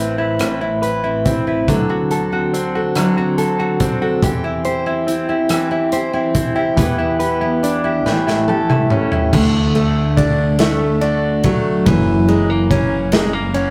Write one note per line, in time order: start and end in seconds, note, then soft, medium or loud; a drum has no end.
0.00 1.68 A1 medium
0.00 0.39 A2 medium
0.00 0.39 C4 soft
0.00 1.25 C4 soft
0.00 0.17 E4 soft
0.00 1.24 E4 soft
0.00 0.17 B4 soft
0.00 0.81 B4 medium
0.18 0.60 E4 soft
0.18 0.39 B4 medium
0.39 1.77 A2 medium
0.39 0.61 C4 medium
0.39 0.81 B4 medium
0.39 cross-stick medium
0.39 closed hi-hat medium
0.61 1.03 C4 soft
0.61 1.03 E4 soft
0.82 1.76 B4 medium
0.82 1.46 B4 soft
0.82 closed hi-hat soft
1.04 1.89 C4 medium
1.04 1.46 E4 soft
1.25 1.93 C4 soft
1.25 1.77 E4 medium
1.25 kick medium
1.25 closed hi-hat medium
1.47 1.77 E4 soft
1.47 1.68 B4 soft
1.68 4.19 D2 medium
1.68 2.94 D3 medium
1.68 2.95 F#3 medium
1.68 2.10 A4 medium
1.68 kick medium
1.68 closed hi-hat medium
1.89 2.32 C4 soft
1.89 2.32 F#4 soft
2.11 2.74 A4 medium
2.11 3.37 A4 medium
2.11 closed hi-hat soft
2.32 3.17 C4 medium
2.32 2.74 F#4 medium
2.54 3.80 C4 medium
2.54 3.79 D4 soft
2.54 closed hi-hat medium
2.75 3.16 F#4 soft
2.75 2.95 A4 medium
2.95 4.22 D3 medium
2.95 4.31 F#3 medium
2.95 3.37 A4 medium
2.95 cross-stick medium
2.95 closed hi-hat medium
3.17 3.59 C4 medium
3.17 3.58 F#4 soft
3.38 4.31 A4 medium
3.38 4.01 A4 medium
3.38 closed hi-hat soft
3.59 4.23 C4 medium
3.59 4.01 F#4 soft
3.80 5.07 C4 medium
3.80 4.31 D4 medium
3.80 kick medium
3.80 closed hi-hat medium
4.02 4.31 F#4 soft
4.02 4.23 A4 medium
4.23 6.73 E2 medium
4.23 5.50 E3 medium
4.23 4.43 C4 medium
4.23 4.65 G4 medium
4.23 kick medium
4.23 closed hi-hat medium
4.44 4.85 C4 soft
4.44 4.86 E4 medium
4.65 5.28 G4 medium
4.65 5.91 C5 medium
4.65 closed hi-hat soft
4.86 5.49 C4 medium
4.86 5.29 E4 medium
5.07 6.34 C4 medium
5.07 6.34 E4 medium
5.07 closed hi-hat medium
5.29 5.71 E4 medium
5.29 5.50 G4 medium
5.49 6.76 E3 medium
5.49 5.70 C4 medium
5.49 5.92 G4 medium
5.49 cross-stick medium
5.49 closed hi-hat medium
5.71 6.12 C4 medium
5.71 6.14 E4 medium
5.92 6.55 G4 medium
5.92 6.86 C5 medium
5.92 closed hi-hat soft
6.13 6.77 C4 medium
6.13 6.55 E4 medium
6.34 6.86 C4 medium
6.34 7.62 E4 medium
6.34 kick medium
6.34 closed hi-hat medium
6.55 6.98 E4 medium
6.55 6.78 G4 medium
6.77 8.05 E2 medium
6.77 8.13 E3 medium
6.77 6.98 B3 medium
6.77 7.19 G4 medium
6.77 kick medium
6.77 closed hi-hat medium
6.98 7.40 B3 medium
6.98 7.40 E4 medium
7.19 7.83 G4 medium
7.19 8.13 B4 medium
7.19 closed hi-hat soft
7.41 8.14 B3 medium
7.41 7.83 E4 medium
7.63 8.14 D4 medium
7.63 closed hi-hat medium
7.84 8.14 E4 soft
7.84 8.05 G4 medium
8.05 8.86 A1 medium
8.05 9.42 A2 medium
8.05 9.42 E3 medium
8.05 8.48 G4 medium
8.05 snare soft
8.27 8.70 A3 medium
8.27 8.69 E4 medium
8.27 snare soft
8.48 9.12 G4 medium
8.48 11.98 A4 medium
8.48 high tom medium
8.70 9.33 A3 medium
8.70 9.11 E4 medium
8.70 mid tom medium
8.90 9.42 C#4 medium
8.90 mid tom medium
9.12 9.41 E4 medium
9.12 9.42 G4 medium
9.12 floor tom medium
9.33 11.83 D2 loud
9.33 11.87 D3 medium
9.33 9.74 A3 medium
9.33 kick loud
9.33 crash medium
9.75 10.58 A3 medium
9.75 10.59 A3 medium
9.75 ride soft
10.17 11.00 D4 medium
10.17 11.95 D4 medium
10.17 kick medium
10.17 ride medium
10.59 11.95 A3 medium
10.59 11.43 A3 medium
10.59 snare loud
10.59 ride medium
11.01 11.95 D4 medium
11.01 13.54 F#4 medium
11.01 ride soft
11.44 12.32 F#3 medium
11.44 11.95 A3 medium
11.44 kick loud
11.44 ride medium
11.86 13.70 F#1 loud
11.86 13.70 F#2 medium
11.86 13.70 E3 medium
11.86 kick loud
11.86 ride medium
12.28 12.50 G#3 medium
12.28 13.11 A#3 medium
12.28 ride soft
12.50 13.12 A#3 medium
12.70 13.53 C#4 medium
12.70 13.70 C#4 medium
12.70 kick medium
12.70 ride medium
13.12 13.33 G#3 medium
13.12 13.70 A#3 medium
13.12 snare loud
13.12 ride medium
13.33 13.70 A#3 medium
13.54 13.70 C#4 medium
13.54 13.70 F#4 medium
13.54 ride soft